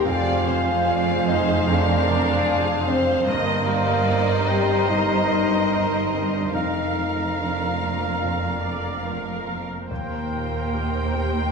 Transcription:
0.04 3.28 F1 medium
0.04 3.28 F2 medium
0.04 1.63 F2 medium
0.04 1.27 F4 loud
0.04 3.23 G#4 medium
0.04 2.96 C5 medium
0.04 3.23 C5 medium
0.04 0.46 D5 loud
0.04 3.23 F5 medium
0.04 1.27 F5 loud
0.04 2.96 G#5 medium
0.45 1.10 C3 medium
0.45 0.87 C5 medium
0.86 1.51 F4 medium
0.86 1.27 D5 medium
1.27 1.92 C4 medium
1.27 1.67 D#4 loud
1.27 1.66 C5 medium
1.27 1.69 D#5 medium
1.67 3.23 F2 medium
1.67 2.86 D4 loud
1.67 2.47 A#4 medium
1.67 2.90 D5 loud
2.07 2.71 C3 medium
2.47 3.11 F4 medium
2.47 2.86 G#4 medium
2.87 3.27 C4 medium
2.87 3.27 C4 loud
2.87 3.27 C5 medium
3.27 6.50 G1 medium
3.27 6.50 G2 medium
3.27 4.85 G2 medium
3.27 4.31 A#3 loud
3.27 6.53 A#4 medium
3.27 4.49 A#4 loud
3.27 6.50 C5 medium
3.27 6.50 D#5 medium
3.27 3.68 D#5 medium
3.27 6.50 A#5 medium
3.67 4.32 G3 medium
3.67 4.89 D5 medium
4.08 4.73 D#4 medium
4.48 5.14 C4 medium
4.48 4.88 G4 loud
4.48 4.91 G5 medium
4.89 6.50 G2 medium
4.89 6.12 D#4 loud
4.89 5.30 C5 medium
4.89 5.97 D#5 medium
5.30 5.96 G3 soft
5.30 6.54 A#4 medium
5.72 6.38 D#4 medium
6.12 6.54 C4 soft
6.12 6.33 D#4 medium
6.12 6.34 D#5 medium
6.33 6.55 D4 medium
6.33 6.56 D5 medium
6.53 9.66 F1 medium
6.53 8.18 F2 medium
6.53 9.66 F2 medium
6.53 7.38 D#4 medium
6.53 7.30 A#4 medium
6.53 9.53 A#4 medium
6.53 9.44 A#4 medium
6.53 7.10 D#5 medium
6.53 9.65 F5 medium
6.53 9.53 A#5 medium
6.98 7.65 F3 soft
7.38 9.48 D4 medium
7.38 8.60 F4 medium
7.38 8.06 F4 soft
7.38 9.44 D5 medium
7.82 8.48 A#3 soft
8.24 9.87 F2 soft
8.64 9.31 F3 soft
8.64 9.05 D5 medium
9.06 9.73 F4 soft
9.06 9.88 A#4 medium
9.48 9.90 A#3 soft
9.90 11.52 D#2 medium
9.90 11.51 D#2 medium
9.90 11.52 D#2 medium
9.90 11.11 A#3 medium
9.90 11.52 A#4 medium
9.90 11.10 A#4 medium
9.90 11.52 C5 medium
9.90 11.52 G5 medium
10.32 10.98 A#2 soft
10.74 11.39 G4 soft
11.14 11.52 A#3 soft
11.14 11.52 G4 medium
11.14 11.52 G5 medium

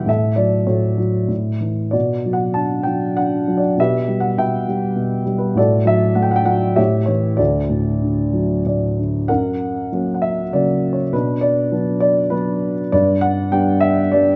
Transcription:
0.06 0.66 A2 medium
0.06 0.65 A4 medium
0.06 0.39 E5 medium
0.36 0.96 F#3 soft
0.36 0.65 D5 medium
0.67 1.27 A2 soft
0.67 1.27 F#4 soft
0.67 1.26 A4 soft
0.67 1.26 C#5 medium
0.98 1.29 F#3 soft
1.28 1.92 A2 soft
1.61 1.93 E3 soft
1.91 3.74 B2 soft
1.91 2.83 F#4 soft
1.91 2.36 D5 medium
2.26 2.85 F#3 soft
2.33 2.56 F#5 medium
2.54 3.16 D4 soft
2.54 2.84 A5 medium
2.83 3.46 F#3 soft
2.83 3.17 G5 medium
3.17 3.77 D4 soft
3.17 3.59 F#5 medium
3.48 3.78 F#3 soft
3.58 3.79 D5 medium
3.78 4.36 B2 soft
3.78 4.65 G4 medium
3.78 4.37 B4 soft
3.78 4.17 E5 medium
4.08 4.67 G3 soft
4.20 4.40 F#5 medium
4.38 4.94 B2 soft
4.38 5.23 B4 soft
4.38 5.23 E5 medium
4.38 5.23 G5 medium
4.68 5.24 G3 soft
4.96 5.54 B2 soft
5.26 5.55 G3 soft
5.38 5.58 B4 medium
5.55 6.74 A2 medium
5.55 6.44 F#4 medium
5.55 6.44 A4 medium
5.55 5.88 D5 medium
5.85 6.45 F#3 soft
5.85 6.18 E5 medium
6.15 6.76 A3 soft
6.15 6.24 F#5 medium
6.22 6.32 G5 medium
6.31 6.40 F#5 medium
6.36 6.46 G5 medium
6.45 6.77 F#3 medium
6.45 6.75 F#5 medium
6.76 7.38 A2 medium
6.76 7.35 G4 medium
6.76 7.04 C#5 medium
6.76 7.09 E5 medium
7.06 7.38 E3 soft
7.06 7.36 C#5 medium
7.37 9.25 D2 medium
7.37 8.60 F#4 soft
7.37 8.61 A4 soft
7.37 8.60 D5 medium
7.70 8.64 A2 soft
8.02 8.98 D3 soft
8.33 9.26 F#3 soft
8.66 9.28 A2 soft
8.66 9.26 D5 soft
8.99 9.29 D3 soft
9.28 11.10 F#2 medium
9.28 10.18 A#4 medium
9.28 9.87 F#5 medium
9.92 10.41 F#3 soft
9.92 10.41 A#3 soft
9.92 10.42 C#4 soft
10.14 10.22 F#5 soft
10.22 10.50 E5 medium
10.53 11.02 C#3 soft
10.53 11.02 F#3 soft
10.53 11.02 A#3 soft
10.53 10.94 D5 medium
10.93 11.12 C#5 medium
11.13 12.88 B2 medium
11.13 11.71 D4 soft
11.13 11.44 B4 medium
11.41 11.99 D5 medium
11.72 12.19 F#3 soft
11.72 12.20 B3 soft
11.72 12.20 D4 soft
12.00 12.32 D5 medium
12.30 12.80 F#3 soft
12.30 12.80 B3 soft
12.30 12.80 D4 soft
12.30 12.73 B4 medium
12.92 14.36 G2 medium
12.92 13.79 B4 medium
12.92 13.21 D5 medium
13.21 13.50 F#5 medium
13.52 14.00 G3 soft
13.52 14.00 B3 soft
13.52 14.00 D4 soft
13.52 13.83 G5 medium
13.81 14.10 E5 medium
14.12 14.36 G3 soft
14.12 14.36 B3 soft
14.12 14.36 D4 soft
14.12 14.36 D5 medium

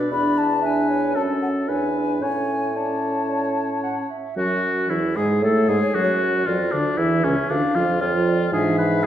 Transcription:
0.00 0.11 D4 soft
0.00 0.12 B4 soft
0.00 0.61 D5 medium
0.11 1.17 E2 soft
0.11 0.49 D4 soft
0.11 0.49 B4 soft
0.11 0.39 B5 medium
0.38 0.67 A5 medium
0.62 1.14 D4 soft
0.62 1.17 B4 medium
0.62 0.90 E5 medium
0.62 1.15 G#5 medium
0.88 1.39 C#5 medium
1.15 1.70 F#2 soft
1.15 1.70 C#4 soft
1.15 1.70 A4 soft
1.15 1.22 A5 medium
1.42 1.48 F#5 medium
1.67 2.23 E2 soft
1.67 2.23 D4 soft
1.67 2.24 B4 soft
1.67 1.96 C#5 medium
1.67 2.21 G#5 medium
1.94 2.22 B4 soft
2.21 4.11 A2 soft
2.21 2.75 C#4 soft
2.21 2.70 C#5 soft
2.21 2.76 C#5 soft
2.21 2.78 G#5 medium
2.75 4.08 C#4 soft
2.75 4.08 C#5 soft
2.75 3.30 D5 soft
2.75 4.11 A5 soft
3.29 3.82 C#5 soft
3.83 3.95 F#5 soft
4.10 4.36 E5 soft
4.36 4.86 F#2 medium
4.36 4.86 F#3 medium
4.36 4.92 F#4 medium
4.36 4.91 F#4 medium
4.89 5.18 E2 medium
4.89 5.01 E3 soft
4.89 5.18 E4 medium
4.89 5.15 E4 medium
5.16 5.41 G#2 medium
5.16 5.43 G#3 medium
5.16 5.43 G#4 medium
5.42 5.68 A2 medium
5.42 5.69 A3 medium
5.42 5.68 A4 medium
5.42 5.70 A4 medium
5.42 6.43 C#5 medium
5.68 5.80 G#2 medium
5.68 5.94 G#3 medium
5.68 5.96 G#4 medium
5.68 5.94 G#4 medium
5.94 6.48 F#2 medium
5.94 6.46 F#3 medium
5.94 6.49 F#4 medium
5.94 6.48 F#4 medium
6.46 6.71 F2 medium
6.46 6.58 F3 medium
6.46 6.73 F4 medium
6.46 6.72 F4 medium
6.46 7.00 D5 medium
6.72 6.97 D2 medium
6.72 6.84 D3 medium
6.72 6.99 D4 medium
6.97 7.23 E2 medium
6.97 7.23 E3 medium
6.97 7.26 E4 medium
6.97 7.23 E4 medium
6.97 7.52 E5 medium
7.24 7.35 C#2 medium
7.24 7.36 C#3 medium
7.24 7.35 C#4 medium
7.24 7.51 C#4 medium
7.49 7.61 D2 medium
7.49 7.62 D3 medium
7.49 7.76 D4 medium
7.49 7.77 D4 medium
7.49 8.02 F5 medium
7.75 8.00 F2 medium
7.75 7.87 F3 medium
7.75 8.00 F4 medium
7.75 8.01 F4 medium
8.00 8.51 F2 medium
8.00 8.51 F3 medium
8.00 8.51 F4 medium
8.00 8.29 C#5 medium
8.28 8.52 D5 soft
8.52 9.06 G#2 medium
8.52 9.00 E3 soft
8.52 9.00 D4 medium
8.52 8.78 G#4 medium
8.52 9.06 E5 medium
8.78 9.05 B4 medium

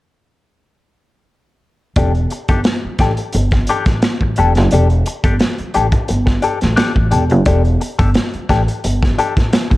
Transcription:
1.96 2.25 E1 loud
1.96 2.11 D4 medium
1.96 2.12 G4 medium
1.96 2.12 A4 medium
1.96 kick loud
1.96 closed hi-hat medium
2.15 closed hi-hat soft
2.30 muted clean electric guitar stroke soft
2.30 closed hi-hat medium
2.48 2.63 G1 medium
2.48 2.60 D4 soft
2.48 2.60 G4 soft
2.48 2.59 A4 medium
2.48 kick loud
2.48 closed hi-hat medium
2.64 muted clean electric guitar stroke soft
2.64 snare loud
2.64 closed hi-hat medium
2.85 muted upright bass stroke soft
2.99 3.15 A1 medium
2.99 3.11 D4 medium
2.99 3.11 G4 medium
2.99 3.12 A4 medium
2.99 kick medium
2.99 snare soft
2.99 closed hi-hat medium
3.17 muted clean electric guitar stroke soft
3.17 closed hi-hat medium
3.32 3.63 G1 medium
3.32 muted clean electric guitar stroke soft
3.32 closed hi-hat medium
3.51 muted clean electric guitar stroke soft
3.51 kick medium
3.51 snare soft
3.51 closed hi-hat soft
3.67 3.83 D4 medium
3.67 3.84 G4 medium
3.67 3.84 A4 medium
3.67 closed hi-hat medium
3.86 4.00 A1 medium
3.86 kick medium
3.86 snare soft
3.86 closed hi-hat soft
4.02 muted clean electric guitar stroke soft
4.02 snare loud
4.02 closed hi-hat medium
4.21 4.35 A1 medium
4.21 muted clean electric guitar stroke soft
4.21 kick medium
4.36 4.57 E1 medium
4.36 4.52 D4 medium
4.36 4.52 G4 medium
4.36 4.53 A4 medium
4.36 closed hi-hat medium
4.55 4.70 F#1 medium
4.55 muted clean electric guitar stroke soft
4.55 snare soft
4.55 closed hi-hat soft
4.71 5.01 E1 loud
4.71 4.86 D4 medium
4.71 4.87 G4 medium
4.71 4.87 A4 medium
4.71 closed hi-hat medium
4.90 closed hi-hat soft
5.06 muted clean electric guitar stroke soft
5.06 closed hi-hat medium
5.24 5.38 G1 medium
5.24 5.35 D4 soft
5.24 5.35 G4 soft
5.24 5.34 A4 medium
5.24 kick loud
5.24 closed hi-hat soft
5.39 muted clean electric guitar stroke soft
5.39 snare medium
5.39 closed hi-hat medium
5.58 muted upright bass stroke soft
5.58 closed hi-hat soft
5.74 5.91 A1 medium
5.74 5.86 D4 medium
5.74 5.86 G4 medium
5.74 5.87 A4 medium
5.74 closed hi-hat medium
5.92 muted clean electric guitar stroke soft
5.92 kick medium
5.92 closed hi-hat soft
6.08 6.39 G1 medium
6.08 muted clean electric guitar stroke soft
6.08 closed hi-hat medium
6.26 muted clean electric guitar stroke soft
6.26 kick medium
6.26 snare soft
6.42 6.57 D4 medium
6.42 6.58 G4 medium
6.42 6.58 A4 medium
6.42 closed hi-hat medium
6.61 6.76 A1 medium
6.61 muted clean electric guitar stroke soft
6.61 snare soft
6.61 closed hi-hat soft
6.76 6.92 D4 medium
6.76 6.92 G4 medium
6.76 6.93 A4 medium
6.76 snare loud
6.76 closed hi-hat medium
6.95 7.09 A1 medium
6.95 muted clean electric guitar stroke medium
6.95 kick medium
7.11 7.31 E1 medium
7.11 7.23 D4 soft
7.11 7.23 G4 medium
7.11 7.24 A4 medium
7.11 closed hi-hat medium
7.29 7.44 F#1 medium
7.29 muted clean electric guitar stroke soft
7.29 closed hi-hat soft
7.46 7.75 E1 medium
7.46 7.61 D4 medium
7.46 7.62 G4 medium
7.46 7.62 A4 medium
7.46 kick loud
7.46 closed hi-hat medium
7.65 closed hi-hat soft
7.81 muted clean electric guitar stroke soft
7.81 closed hi-hat medium
7.99 8.13 G1 loud
7.99 8.10 D4 medium
7.99 8.09 G4 medium
7.99 8.09 A4 medium
7.99 kick loud
7.99 closed hi-hat medium
8.14 muted clean electric guitar stroke soft
8.14 snare medium
8.14 closed hi-hat medium
8.33 muted upright bass stroke soft
8.33 closed hi-hat soft
8.49 8.65 A1 loud
8.49 8.61 D4 medium
8.49 8.61 G4 medium
8.49 8.62 A4 medium
8.49 kick medium
8.49 snare soft
8.49 closed hi-hat medium
8.68 muted clean electric guitar stroke soft
8.68 closed hi-hat medium
8.84 9.13 G1 medium
8.84 muted clean electric guitar stroke soft
8.84 closed hi-hat medium
9.03 muted clean electric guitar stroke soft
9.03 kick medium
9.03 snare soft
9.18 9.33 D4 medium
9.18 9.33 G4 medium
9.18 9.34 A4 medium
9.18 closed hi-hat medium
9.37 9.51 A1 medium
9.37 muted clean electric guitar stroke soft
9.37 kick medium
9.37 snare soft
9.37 closed hi-hat soft
9.53 muted clean electric guitar stroke soft
9.53 snare loud
9.53 closed hi-hat medium
9.71 9.77 A1 medium
9.71 muted clean electric guitar stroke soft
9.71 kick medium
9.71 closed hi-hat soft

